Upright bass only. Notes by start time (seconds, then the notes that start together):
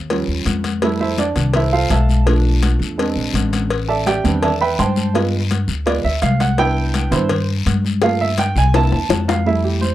Already playing: D#2
0.28 D#2
0.46 F2
1.36 C2
1.90 B1
2.79 E2
3.16 A#1
3.33 A1
4.24 E2
4.79 G2
5.68 D2
6.04 D2
6.22 C2
7.11 G2
7.66 G2
8.55 C2
8.92 E2
9.09 F2